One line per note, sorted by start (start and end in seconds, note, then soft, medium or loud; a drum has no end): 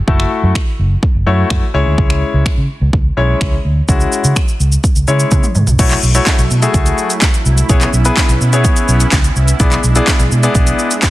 0.07 0.23 F#1 loud
0.07 0.55 A3 medium
0.07 0.55 E4 medium
0.07 0.55 F#4 medium
0.07 0.55 A4 medium
0.07 kick loud
0.20 finger snap medium
0.43 0.51 F#2 medium
0.55 finger snap loud
0.55 kick loud
0.79 0.94 F#1 loud
1.03 kick loud
1.15 1.22 F#1 medium
1.26 1.42 F#2 loud
1.26 1.62 A3 medium
1.26 1.62 E4 medium
1.26 1.62 F#4 medium
1.26 1.62 C#5 medium
1.50 1.58 F#2 loud
1.50 finger snap loud
1.50 kick loud
1.74 1.82 C#2 loud
1.74 2.50 G#3 medium
1.74 2.50 C#4 medium
1.74 2.50 E4 medium
1.74 2.51 C#5 loud
1.86 1.94 D2 medium
1.98 2.21 C#2 loud
1.98 kick loud
2.10 finger snap medium
2.34 2.41 C#2 medium
2.46 finger snap loud
2.46 kick loud
2.58 2.65 C#3 medium
2.81 2.89 C#2 loud
2.93 3.09 C#2 loud
2.93 kick loud
3.17 3.33 B1 medium
3.17 3.53 G#3 medium
3.17 3.53 C#4 medium
3.17 3.53 E4 medium
3.17 3.53 C#5 medium
3.41 3.56 C#2 medium
3.41 finger snap loud
3.41 kick loud
3.65 3.80 D2 medium
3.88 4.04 C#2 loud
3.88 4.36 G#3 medium
3.88 4.36 C#4 medium
3.88 4.36 E4 medium
3.88 4.36 F#4 medium
3.88 kick loud
3.88 shaker medium
4.00 shaker soft
4.12 shaker medium
4.24 4.32 C#3 medium
4.24 shaker medium
4.36 finger snap loud
4.36 kick loud
4.36 shaker medium
4.48 shaker medium
4.60 4.75 C#2 medium
4.60 shaker medium
4.72 shaker medium
4.84 kick loud
4.84 shaker medium
4.96 5.03 C#2 medium
4.96 shaker medium
5.07 5.23 C#3 loud
5.07 5.43 G#3 medium
5.07 5.43 C#4 medium
5.07 5.43 E4 medium
5.07 5.43 C#5 medium
5.07 shaker medium
5.20 shaker medium
5.31 5.39 C#3 medium
5.31 kick loud
5.31 high tom medium
5.31 shaker medium
5.43 mid tom medium
5.43 shaker medium
5.55 5.63 G#2 medium
5.55 mid tom medium
5.55 shaker soft
5.67 5.75 C2 medium
5.67 floor tom medium
5.67 shaker medium
5.79 5.94 B1 loud
5.79 7.68 F#3 medium
5.79 5.97 A3 medium
5.79 7.68 A3 medium
5.79 5.97 E4 medium
5.79 11.10 E4 medium
5.79 5.97 F#4 medium
5.79 5.97 C#5 medium
5.79 kick loud
5.79 closed hi-hat medium
5.79 crash medium
5.79 shaker medium
5.91 clap medium
5.91 closed hi-hat medium
5.91 shaker medium
6.03 6.18 B1 medium
6.03 shaker medium
6.15 6.38 A3 medium
6.15 6.39 E4 medium
6.15 6.39 F#4 medium
6.15 6.39 C#5 medium
6.15 closed hi-hat medium
6.15 shaker medium
6.27 kick loud
6.27 snare medium
6.27 clap loud
6.27 closed hi-hat medium
6.27 shaker medium
6.39 6.46 B1 medium
6.39 closed hi-hat medium
6.39 shaker medium
6.50 6.66 B2 medium
6.50 shaker medium
6.62 7.10 A3 medium
6.62 7.10 E4 medium
6.62 7.10 F#4 medium
6.62 7.10 G#4 medium
6.62 closed hi-hat soft
6.62 shaker medium
6.74 6.90 C#2 medium
6.74 kick loud
6.74 closed hi-hat medium
6.74 shaker medium
6.86 closed hi-hat medium
6.86 shaker medium
6.98 shaker medium
7.10 closed hi-hat medium
7.10 shaker medium
7.22 kick loud
7.22 snare medium
7.22 clap loud
7.22 closed hi-hat medium
7.22 shaker medium
7.34 closed hi-hat medium
7.34 shaker medium
7.46 7.61 C2 medium
7.46 shaker soft
7.58 closed hi-hat medium
7.58 shaker medium
7.69 7.85 B1 loud
7.69 7.87 B3 medium
7.69 9.58 B3 medium
7.69 9.58 C#4 medium
7.69 7.87 E4 medium
7.69 7.87 G#4 medium
7.69 7.88 C#5 medium
7.69 kick loud
7.69 closed hi-hat medium
7.69 shaker medium
7.81 clap medium
7.81 closed hi-hat soft
7.81 shaker soft
7.93 8.09 B1 loud
7.93 shaker medium
8.05 8.29 B3 medium
8.05 8.29 E4 medium
8.05 8.29 G#4 medium
8.05 8.29 B4 loud
8.05 closed hi-hat medium
8.05 shaker medium
8.17 kick loud
8.17 snare medium
8.17 clap loud
8.17 closed hi-hat medium
8.17 shaker medium
8.29 8.37 B1 medium
8.29 closed hi-hat medium
8.29 shaker medium
8.41 8.64 B2 medium
8.41 shaker medium
8.53 9.00 B3 medium
8.53 9.00 E4 medium
8.53 9.00 G#4 medium
8.53 9.01 C#5 loud
8.53 closed hi-hat medium
8.53 shaker medium
8.65 kick loud
8.65 closed hi-hat medium
8.65 shaker medium
8.76 closed hi-hat medium
8.76 shaker medium
8.88 9.04 B1 medium
8.88 shaker medium
9.00 closed hi-hat medium
9.00 shaker medium
9.12 9.28 C#2 medium
9.12 kick loud
9.12 snare medium
9.12 clap loud
9.12 closed hi-hat medium
9.12 shaker medium
9.24 closed hi-hat medium
9.24 shaker medium
9.36 9.52 C2 medium
9.36 shaker soft
9.48 closed hi-hat medium
9.48 shaker medium
9.60 9.75 B1 loud
9.60 11.10 G#3 medium
9.60 9.78 B3 medium
9.60 11.10 D4 medium
9.60 9.78 E4 medium
9.60 9.78 G#4 medium
9.60 9.78 D5 medium
9.60 kick loud
9.60 closed hi-hat medium
9.60 shaker medium
9.72 clap medium
9.72 closed hi-hat medium
9.72 shaker soft
9.84 9.99 B1 loud
9.84 shaker medium
9.96 10.19 B3 medium
9.96 10.19 E4 medium
9.96 10.20 G#4 medium
9.96 10.20 D5 loud
9.96 closed hi-hat medium
9.96 shaker medium
10.08 kick loud
10.08 snare medium
10.08 clap loud
10.08 closed hi-hat medium
10.08 shaker medium
10.19 10.27 B1 medium
10.19 closed hi-hat medium
10.19 shaker medium
10.31 10.47 B2 loud
10.31 shaker medium
10.43 10.91 B3 medium
10.43 10.91 E4 medium
10.43 10.91 G#4 medium
10.43 10.91 D5 loud
10.43 closed hi-hat soft
10.43 shaker medium
10.55 10.70 B1 loud
10.55 kick loud
10.55 closed hi-hat medium
10.55 shaker medium
10.67 closed hi-hat medium
10.67 shaker medium
10.79 shaker medium
10.91 closed hi-hat medium
10.91 shaker medium
11.02 kick loud
11.02 snare medium
11.02 clap loud
11.02 closed hi-hat medium
11.02 shaker medium